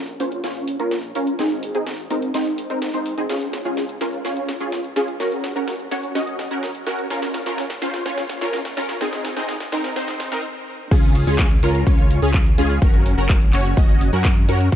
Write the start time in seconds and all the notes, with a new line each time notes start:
Already playing: A#1
0.08 closed hi-hat
0.20 A#1 C#4 F4 C5, open hi-hat
0.32 closed hi-hat
0.44 A#1 C#4 F4 C#5, snare, closed hi-hat
0.56 closed hi-hat
0.68 open hi-hat
0.79 A#1 C#4 F4 A#4, closed hi-hat
0.91 snare, closed hi-hat
1.03 closed hi-hat
1.15 A#1 C#4 F4 A#4, open hi-hat
1.27 closed hi-hat
1.39 G#1 C4 D#4 G#4, snare, closed hi-hat
1.51 closed hi-hat
1.63 open hi-hat
1.75 G#1 C4 D#4 G#4, closed hi-hat
1.87 snare, closed hi-hat
1.99 closed hi-hat
2.10 G#1 C4 D#4 A#4, open hi-hat
2.22 closed hi-hat
2.34 G#1 C4 D#4 C5, snare, closed hi-hat
2.46 closed hi-hat
2.58 open hi-hat
2.70 G#1 C4 D#4 A#4, closed hi-hat
2.82 snare, closed hi-hat
2.94 G#2 C4 D#4 C5, closed hi-hat
3.06 open hi-hat
3.18 G#1 C4 D#4 G#4, closed hi-hat
3.29 C#2 C#4 F4 G#4, snare, closed hi-hat, shaker
3.41 closed hi-hat, shaker
3.53 snare, open hi-hat, shaker
3.65 C#2 C#4 F4 G#4, closed hi-hat, shaker
3.77 snare, closed hi-hat, shaker
3.89 closed hi-hat, shaker
4.01 C#2 C#4 F4 A#4, snare, open hi-hat, shaker
4.13 closed hi-hat, shaker
4.25 C#2 C#4 F4 C#5, snare, closed hi-hat, shaker
4.37 closed hi-hat
4.49 snare, open hi-hat, shaker
4.60 C#2 C#4 F4 G#4, closed hi-hat, shaker
4.72 snare, closed hi-hat, shaker
4.84 closed hi-hat
4.96 C#2 C#4 F4 G#4, snare, open hi-hat, shaker
5.08 closed hi-hat, shaker
5.20 F#1 C#4 F#4 A#4, snare, closed hi-hat, shaker
5.32 closed hi-hat, shaker
5.44 snare, open hi-hat, shaker
5.56 F#1 C#4 F#4 A#4, closed hi-hat, shaker
5.68 snare, closed hi-hat, shaker
5.80 closed hi-hat, shaker
5.91 F#1 C#4 F#4 C#5, snare, open hi-hat, shaker
6.03 closed hi-hat, shaker
6.15 F#1 C#4 F#4 D#5, snare, closed hi-hat, shaker
6.27 closed hi-hat
6.39 snare, open hi-hat, shaker
6.51 F#2 C#4 F#4 A#4, closed hi-hat, shaker
6.63 snare, closed hi-hat, shaker
6.75 closed hi-hat
6.87 F#2 C#4 F#4 A#4, snare, open hi-hat, shaker
6.99 closed hi-hat, shaker
7.10 A#1 C#4 F4 A#4, snare, closed hi-hat, shaker
7.22 snare, closed hi-hat, shaker
7.34 snare, open hi-hat, shaker
7.46 A#1 C#4 F4 A#4, snare, closed hi-hat, shaker
7.58 snare, closed hi-hat, shaker
7.70 snare, closed hi-hat, shaker
7.82 A#1 C#4 F4 C5, snare, open hi-hat, shaker
7.94 snare, closed hi-hat, shaker
8.06 A#1 C#4 F4 C#5, snare, closed hi-hat, shaker
8.18 snare, closed hi-hat
8.29 snare, open hi-hat, shaker
8.41 A#1 C#4 F4 A#4, snare, closed hi-hat, shaker
8.53 snare, closed hi-hat, shaker
8.65 snare, closed hi-hat
8.77 A#1 C#4 F4 A#4, snare, open hi-hat, shaker
8.89 snare, closed hi-hat, shaker
9.01 G#1 C4 D#4 G#4, snare, closed hi-hat, shaker
9.13 snare, closed hi-hat, shaker
9.25 snare, open hi-hat, shaker
9.37 G#1 C4 D#4 G#4, snare, closed hi-hat, shaker
9.49 snare, closed hi-hat, shaker
9.60 snare, closed hi-hat, shaker
9.72 G#1 C4 D#4 A#4, snare, open hi-hat, shaker
9.84 snare, closed hi-hat, shaker
9.96 G#1 C4 D#4 C5, snare, closed hi-hat, shaker
10.08 snare, closed hi-hat, shaker
10.20 snare, open hi-hat, shaker
10.32 G#1 C4 D#4 A#4, snare, closed hi-hat, shaker
10.91 C#2 C#4 F4 G#4, kick, closed hi-hat, crash, shaker
11.03 closed hi-hat
11.15 open hi-hat, shaker
11.27 C#2 C#4 F4 G#4, closed hi-hat, shaker
11.39 kick, clap, closed hi-hat, shaker
11.51 closed hi-hat
11.63 C#2 C#4 F4 A#4, open hi-hat, shaker
11.75 closed hi-hat, shaker
11.87 C#2 C#4 F4 C#5, kick, closed hi-hat, shaker
11.99 closed hi-hat
12.11 open hi-hat, shaker
12.22 C#2 C#4 F4 G#4, closed hi-hat, shaker
12.34 kick, clap, closed hi-hat, shaker
12.46 closed hi-hat
12.58 C#2 C#4 F4 G#4, open hi-hat, shaker
12.70 closed hi-hat, shaker
12.82 F#1 C#4 F#4 A#4, kick, closed hi-hat, shaker
12.94 closed hi-hat
13.06 open hi-hat, shaker
13.18 F#1 C#4 F#4 A#4, closed hi-hat, shaker
13.29 kick, clap, closed hi-hat, shaker
13.41 closed hi-hat
13.53 F#1 C#4 F#4 C#5, clap, open hi-hat, shaker
13.65 closed hi-hat, shaker
13.77 F#1 C#4 F#4 D#5, kick, closed hi-hat, shaker
13.89 closed hi-hat
14.01 open hi-hat, shaker
14.13 F#2 C#4 F#4 A#4, closed hi-hat, shaker
14.25 kick, clap, closed hi-hat, shaker
14.37 closed hi-hat
14.49 F#2 C#4 F#4 A#4, open hi-hat, shaker
14.61 closed hi-hat, shaker
14.72 A#1 C#4 F4 A#4, kick, closed hi-hat, shaker